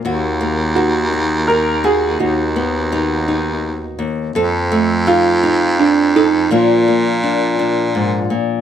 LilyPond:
<<
  \new Staff \with { instrumentName = "Upright piano" } { \time 3/4 \key ees \minor \tempo 4 = 84 r4 ges'4 bes'8 aes'8 | fis'2~ fis'8 r8 | r4 f'4 d'8 ees'8 | f'2~ f'8 r8 | }
  \new Staff \with { instrumentName = "Nylon-string guitar" } { \time 3/4 \key ees \minor << { ges'8 bes8 ees'8 ees'8 ees'8 ges'8 | dis'8 b8 dis'8 dis'4. | a'8 a8 ees'8 ees'8 r8 a'8 | <f bes d'>8 bes8 d'8 d'4. | } \\ { ees,2. | dis,2~ dis,8 dis,8 | f,2. | bes,2 aes,8 bes,8 | } >> }
  \new Staff \with { instrumentName = "Baritone saxophone" } { \clef bass \time 3/4 \key ees \minor ees,2. | dis,2~ dis,8 r8 | f,2. | bes,2~ bes,8 r8 | }
>>